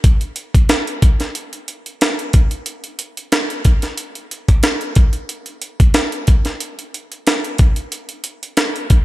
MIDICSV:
0, 0, Header, 1, 2, 480
1, 0, Start_track
1, 0, Tempo, 656455
1, 30, Time_signature, 4, 2, 24, 8
1, 6616, End_track
2, 0, Start_track
2, 0, Title_t, "Drums"
2, 29, Note_on_c, 9, 36, 117
2, 29, Note_on_c, 9, 42, 91
2, 102, Note_off_c, 9, 42, 0
2, 103, Note_off_c, 9, 36, 0
2, 153, Note_on_c, 9, 42, 51
2, 226, Note_off_c, 9, 42, 0
2, 262, Note_on_c, 9, 42, 79
2, 335, Note_off_c, 9, 42, 0
2, 399, Note_on_c, 9, 36, 89
2, 401, Note_on_c, 9, 42, 63
2, 472, Note_off_c, 9, 36, 0
2, 474, Note_off_c, 9, 42, 0
2, 505, Note_on_c, 9, 42, 80
2, 508, Note_on_c, 9, 38, 96
2, 578, Note_off_c, 9, 42, 0
2, 581, Note_off_c, 9, 38, 0
2, 639, Note_on_c, 9, 42, 53
2, 712, Note_off_c, 9, 42, 0
2, 748, Note_on_c, 9, 42, 75
2, 749, Note_on_c, 9, 36, 88
2, 821, Note_off_c, 9, 42, 0
2, 822, Note_off_c, 9, 36, 0
2, 876, Note_on_c, 9, 42, 57
2, 881, Note_on_c, 9, 38, 39
2, 949, Note_off_c, 9, 42, 0
2, 955, Note_off_c, 9, 38, 0
2, 988, Note_on_c, 9, 42, 88
2, 1061, Note_off_c, 9, 42, 0
2, 1117, Note_on_c, 9, 42, 50
2, 1190, Note_off_c, 9, 42, 0
2, 1228, Note_on_c, 9, 42, 68
2, 1301, Note_off_c, 9, 42, 0
2, 1361, Note_on_c, 9, 42, 51
2, 1434, Note_off_c, 9, 42, 0
2, 1471, Note_on_c, 9, 42, 84
2, 1476, Note_on_c, 9, 38, 103
2, 1544, Note_off_c, 9, 42, 0
2, 1549, Note_off_c, 9, 38, 0
2, 1601, Note_on_c, 9, 42, 50
2, 1674, Note_off_c, 9, 42, 0
2, 1706, Note_on_c, 9, 42, 81
2, 1710, Note_on_c, 9, 36, 101
2, 1779, Note_off_c, 9, 42, 0
2, 1783, Note_off_c, 9, 36, 0
2, 1835, Note_on_c, 9, 42, 56
2, 1908, Note_off_c, 9, 42, 0
2, 1945, Note_on_c, 9, 42, 92
2, 2018, Note_off_c, 9, 42, 0
2, 2074, Note_on_c, 9, 42, 55
2, 2148, Note_off_c, 9, 42, 0
2, 2185, Note_on_c, 9, 42, 86
2, 2258, Note_off_c, 9, 42, 0
2, 2320, Note_on_c, 9, 42, 65
2, 2393, Note_off_c, 9, 42, 0
2, 2428, Note_on_c, 9, 42, 84
2, 2431, Note_on_c, 9, 38, 98
2, 2501, Note_off_c, 9, 42, 0
2, 2504, Note_off_c, 9, 38, 0
2, 2560, Note_on_c, 9, 42, 53
2, 2634, Note_off_c, 9, 42, 0
2, 2666, Note_on_c, 9, 42, 71
2, 2669, Note_on_c, 9, 36, 85
2, 2739, Note_off_c, 9, 42, 0
2, 2743, Note_off_c, 9, 36, 0
2, 2795, Note_on_c, 9, 42, 61
2, 2801, Note_on_c, 9, 38, 37
2, 2868, Note_off_c, 9, 42, 0
2, 2874, Note_off_c, 9, 38, 0
2, 2907, Note_on_c, 9, 42, 95
2, 2980, Note_off_c, 9, 42, 0
2, 3037, Note_on_c, 9, 42, 47
2, 3110, Note_off_c, 9, 42, 0
2, 3154, Note_on_c, 9, 42, 74
2, 3227, Note_off_c, 9, 42, 0
2, 3279, Note_on_c, 9, 42, 54
2, 3280, Note_on_c, 9, 36, 81
2, 3352, Note_off_c, 9, 42, 0
2, 3353, Note_off_c, 9, 36, 0
2, 3384, Note_on_c, 9, 42, 85
2, 3389, Note_on_c, 9, 38, 104
2, 3457, Note_off_c, 9, 42, 0
2, 3462, Note_off_c, 9, 38, 0
2, 3516, Note_on_c, 9, 42, 49
2, 3589, Note_off_c, 9, 42, 0
2, 3622, Note_on_c, 9, 42, 77
2, 3630, Note_on_c, 9, 36, 109
2, 3695, Note_off_c, 9, 42, 0
2, 3703, Note_off_c, 9, 36, 0
2, 3750, Note_on_c, 9, 42, 54
2, 3823, Note_off_c, 9, 42, 0
2, 3869, Note_on_c, 9, 42, 89
2, 3942, Note_off_c, 9, 42, 0
2, 3991, Note_on_c, 9, 42, 55
2, 4065, Note_off_c, 9, 42, 0
2, 4106, Note_on_c, 9, 42, 78
2, 4179, Note_off_c, 9, 42, 0
2, 4240, Note_on_c, 9, 36, 93
2, 4240, Note_on_c, 9, 42, 67
2, 4313, Note_off_c, 9, 42, 0
2, 4314, Note_off_c, 9, 36, 0
2, 4343, Note_on_c, 9, 42, 80
2, 4347, Note_on_c, 9, 38, 98
2, 4417, Note_off_c, 9, 42, 0
2, 4420, Note_off_c, 9, 38, 0
2, 4477, Note_on_c, 9, 42, 53
2, 4550, Note_off_c, 9, 42, 0
2, 4585, Note_on_c, 9, 42, 73
2, 4591, Note_on_c, 9, 36, 92
2, 4658, Note_off_c, 9, 42, 0
2, 4664, Note_off_c, 9, 36, 0
2, 4715, Note_on_c, 9, 42, 58
2, 4721, Note_on_c, 9, 38, 37
2, 4788, Note_off_c, 9, 42, 0
2, 4794, Note_off_c, 9, 38, 0
2, 4829, Note_on_c, 9, 42, 95
2, 4903, Note_off_c, 9, 42, 0
2, 4963, Note_on_c, 9, 42, 52
2, 5036, Note_off_c, 9, 42, 0
2, 5077, Note_on_c, 9, 42, 68
2, 5150, Note_off_c, 9, 42, 0
2, 5203, Note_on_c, 9, 42, 50
2, 5276, Note_off_c, 9, 42, 0
2, 5313, Note_on_c, 9, 42, 86
2, 5319, Note_on_c, 9, 38, 101
2, 5386, Note_off_c, 9, 42, 0
2, 5392, Note_off_c, 9, 38, 0
2, 5443, Note_on_c, 9, 42, 51
2, 5517, Note_off_c, 9, 42, 0
2, 5546, Note_on_c, 9, 42, 78
2, 5552, Note_on_c, 9, 36, 111
2, 5619, Note_off_c, 9, 42, 0
2, 5625, Note_off_c, 9, 36, 0
2, 5676, Note_on_c, 9, 42, 60
2, 5749, Note_off_c, 9, 42, 0
2, 5790, Note_on_c, 9, 42, 92
2, 5863, Note_off_c, 9, 42, 0
2, 5914, Note_on_c, 9, 42, 58
2, 5987, Note_off_c, 9, 42, 0
2, 6023, Note_on_c, 9, 42, 88
2, 6096, Note_off_c, 9, 42, 0
2, 6163, Note_on_c, 9, 42, 60
2, 6236, Note_off_c, 9, 42, 0
2, 6266, Note_on_c, 9, 42, 86
2, 6269, Note_on_c, 9, 38, 100
2, 6339, Note_off_c, 9, 42, 0
2, 6342, Note_off_c, 9, 38, 0
2, 6403, Note_on_c, 9, 42, 51
2, 6476, Note_off_c, 9, 42, 0
2, 6507, Note_on_c, 9, 42, 72
2, 6510, Note_on_c, 9, 36, 95
2, 6580, Note_off_c, 9, 42, 0
2, 6583, Note_off_c, 9, 36, 0
2, 6616, End_track
0, 0, End_of_file